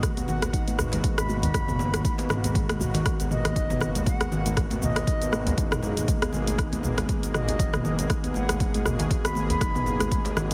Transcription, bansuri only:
0.28 0.79 F#5 loud
1.18 1.37 B5 loud
1.43 2.13 B5 loud
3.31 3.79 D#5 loud
3.81 3.90 D#5 medium
3.96 4.03 D#5 medium
4.07 4.57 F#5 medium
4.82 5.53 D#5 loud
7.34 7.82 D#5 loud
7.85 7.94 D#5 medium
7.99 8.06 D#5 medium
8.35 8.86 F#5 medium
9.25 9.43 B5 medium
9.50 10.20 B5 loud

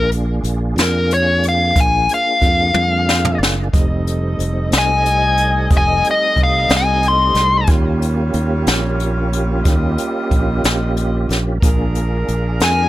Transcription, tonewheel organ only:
0.00 3.68 A#3 medium
0.00 3.68 D4 medium
0.00 3.68 F4 medium
0.00 3.68 G#4 medium
3.73 7.64 G3 medium
3.73 7.65 A3 medium
3.73 7.64 C4 medium
3.73 7.64 D#4 medium
7.68 11.58 A#3 medium
7.68 11.58 C#4 medium
7.68 11.58 F4 medium
7.68 11.58 G4 medium
11.63 12.89 A#3 medium
11.63 12.89 D4 medium
11.63 12.89 F4 medium
11.63 12.89 G#4 medium

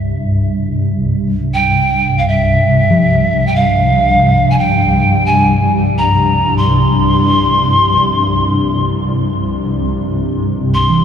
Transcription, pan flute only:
1.54 2.19 G5 medium
2.18 2.29 F5 soft
2.28 3.48 E5 medium
3.47 3.57 G5 medium
3.55 4.52 F5 medium
4.50 4.60 G#5 soft
4.58 5.27 G5 medium
5.26 5.71 G#5 medium
5.98 6.58 A#5 medium
6.57 8.84 C6 medium
10.74 11.04 C6 medium

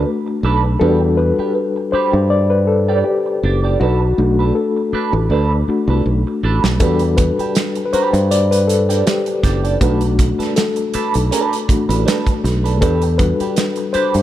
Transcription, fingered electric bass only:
0.43 0.76 B1 medium
0.81 1.31 E2 medium
1.39 muted fingered electric bass stroke soft
1.93 muted fingered electric bass stroke soft
2.13 3.02 G2 medium
3.43 3.76 F#1 medium
3.81 4.13 B1 medium
4.18 4.51 B1 medium
4.93 muted fingered electric bass stroke soft
5.13 5.28 A1 medium
5.30 5.62 D2 medium
5.68 muted fingered electric bass stroke soft
5.88 6.03 C2 medium
6.06 6.23 B1 medium
6.43 6.61 A1 medium
6.64 6.79 B1 medium
6.80 7.30 E2 loud
7.39 muted fingered electric bass stroke soft
7.93 muted fingered electric bass stroke soft
8.13 9.02 G2 medium
9.43 9.76 F#1 medium
9.81 10.31 B1 medium
10.39 muted fingered electric bass stroke soft
10.95 muted fingered electric bass stroke soft
11.15 11.30 B1 medium
11.69 muted fingered electric bass stroke soft
11.89 12.04 A1 medium
12.44 12.82 B1 medium
12.82 13.32 E2 medium
13.40 muted fingered electric bass stroke soft
13.95 muted fingered electric bass stroke soft
14.15 14.22 G2 medium

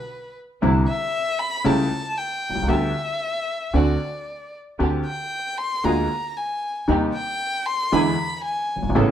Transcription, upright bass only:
0.63 0.84 C2 medium
1.65 1.87 C#2 medium
2.50 2.56 B1 soft
2.57 2.62 C2 medium
2.63 2.69 C#2 medium
2.69 2.91 D2 medium
3.74 3.96 D2 medium
4.80 5.02 D2 medium
5.84 6.06 D2 medium
6.88 7.10 D#2 medium
7.93 8.14 E2 medium
8.77 8.83 F#1 soft
8.83 8.88 G1 medium
8.89 8.95 G#1 medium
8.96 9.11 A1 medium

